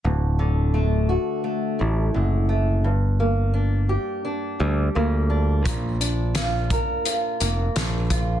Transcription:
<<
  \new Staff \with { instrumentName = "Steel-string acoustic guitar" } { \time 4/4 \key g \major \tempo 4 = 86 d,8 d8 a8 fis'8 a8 a,8 d8 a8 | g,8 bes8 d'8 g'8 d'8 g8 bes8 d'8 | bes,8 d'8 f'8 bes'8 f'8 bes8 d'8 f'8 | }
  \new Staff \with { instrumentName = "Picked electric bass" } { \clef bass \time 4/4 \key g \major d,,2 r8 a,,8 fis,,4 | g,,2 r8 d,8 d,4 | bes,,2 r8 f,,8 bes,,4 | }
  \new DrumStaff \with { instrumentName = "Drums" } \drummode { \time 4/4 r4 r4 r4 r4 | r4 r4 r4 r4 | <hh bd>8 hh8 <hh sn>8 <hh bd>8 hh8 hh8 <hh sn>8 <hh bd>8 | }
>>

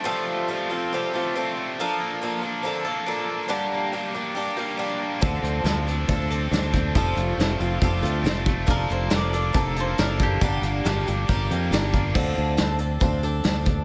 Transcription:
<<
  \new Staff \with { instrumentName = "Mandolin" } { \time 4/4 \key d \minor \tempo 4 = 139 r1 | r1 | r1 | r1 |
r1 | bes'8 c''8 d''4. c''8 bes'8 g'8~ | g'8 r2. r8 | r1 | }
  \new Staff \with { instrumentName = "Twelve-string acoustic guitar" } { \time 4/4 \key d \minor <f g c' f' a'>4 <g c' f' a'>8 <c' f' a'>8 <g c' f' a'>8 <c' f' a'>8 <g c' f' a'>4 | <f bes d' a'>4 <f bes d' a'>8 <bes d' a'>8 <f bes d' a'>8 <bes d' a'>8 <f bes d' a'>4 | <g, d g bes d' g'>4 <g bes d' g'>8 <g bes d' g'>8 <g bes d' g'>8 <g bes d' g'>8 <g bes d' g'>4 | <d f c' d' a'>4 <f c' d' a'>8 <c' d' a'>8 <f c' d' a'>8 <c' d' a'>8 <f c' d' a'>4 |
<f g c' f' a'>4 <g c' f' a'>8 <c' f' a'>8 <g c' f' a'>8 <c' f' a'>8 <g c' f' a'>4 | <f bes d' a'>4 <f bes d' a'>8 <bes d' a'>8 <f bes d' a'>8 <bes d' a'>8 <f bes d' a'>4 | <g, d g bes d' g'>4 <g bes d' g'>8 <g bes d' g'>8 <g bes d' g'>8 <g bes d' g'>8 <g bes d' g'>4 | <d f c' d' a'>4 <f c' d' a'>8 <c' d' a'>8 <f c' d' a'>8 <c' d' a'>8 <f c' d' a'>4 | }
  \new Staff \with { instrumentName = "Overdriven electric guitar" } { \time 4/4 \key d \minor f8 a8 f8 c'8 g'8 a8 c'8 a8 | f8 bes8 f8 d'8 a'8 bes8 d'8 bes8 | g,8 bes8 g8 d'8 g'8 bes8 d'8 bes8 | d8 c'8 f8 d'8 a'8 c'8 d'8 c'8 |
f8 a8 f8 c'8 g'8 a8 c'8 a8 | f8 bes8 f8 d'8 a'8 bes8 d'8 bes8 | g,8 bes8 g8 d'8 g'8 bes8 d'8 bes8 | r1 | }
  \new Staff \with { instrumentName = "Fingered electric bass" } { \clef bass \time 4/4 \key d \minor r1 | r1 | r1 | d,8 d,8 d,4 d,4 d,4 |
f,,8 f,,8 f,,8 f,,8 f,,8 d,8 f,,4 | f,,8 f,,8 f,,4 f,,4 fis,,4 | g,,8 g,,8 g,,8 g,,8 g,,8 f,8 g,,4 | d,8 d,8 d,4 d,4 d,4 | }
  \new DrumStaff \with { instrumentName = "Drums" } \drummode { \time 4/4 r4 r4 r4 r4 | r4 r4 r4 r4 | r4 r4 r4 r4 | <hh bd>8 hh8 <hh sn>8 hh8 <hh bd>8 hh8 <hh sn>8 <hh bd>8 |
<hh bd>8 hh8 <hh sn>8 hh8 <hh bd>8 hh8 <hh sn>8 <hh bd>8 | <hh bd>8 hh8 <hh sn>8 hh8 <hh bd>8 hh8 <hh sn>8 <hh bd>8 | <hh bd>8 hh8 <hh sn>8 hh8 <hh bd>8 hh8 <hh sn>8 <hh bd>8 | <cymc bd>8 hh8 <hh sn>8 hh8 <hh bd>8 hh8 <hh sn>8 <hh bd>8 | }
>>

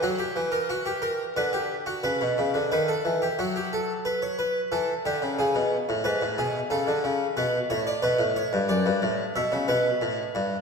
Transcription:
<<
  \new Staff \with { instrumentName = "Harpsichord" } { \time 4/4 \key b \phrygian \tempo 4 = 90 fis'16 g'8 ais'16 fis'16 g'16 ais'8 b'16 g'8 fis'16 b'4 | b'16 a'8 g'16 fis'16 g'16 a'8 b'16 cis''16 b'8 a'8 g'8 | gis'4 b'8 gis'8 a'4 b'8 cis''16 d''16 | b'8 cis''8 d''4 e''8 b'4. | }
  \new Staff \with { instrumentName = "Harpsichord" } { \clef bass \time 4/4 \key b \phrygian fis8 e4. d4 cis16 b,16 cis16 d16 | dis8 e8 fis2 e8 d16 cis16 | cis16 b,8 a,16 gis,16 a,16 b,8 cis16 d16 cis8 b,8 a,8 | b,16 a,8 g,16 fis,16 g,16 a,8 b,16 cis16 b,8 a,8 g,8 | }
>>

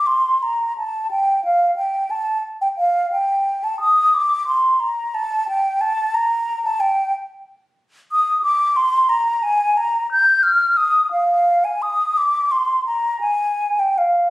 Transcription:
\new Staff \with { instrumentName = "Flute" } { \time 6/8 \key bes \major \tempo 4. = 59 c'''8 bes''8 a''8 g''8 f''8 g''8 | a''8. g''16 f''8 g''8. a''16 ees'''8 | d'''8 c'''8 bes''8 a''8 g''8 a''8 | bes''8. a''16 g''8 r4. |
\key ees \major ees'''8 d'''8 c'''8 bes''8 aes''8 bes''8 | g'''8 f'''8 ees'''8 f''8. aes''16 ees'''8 | d'''8 c'''8 bes''8 aes''8. g''16 f''8 | }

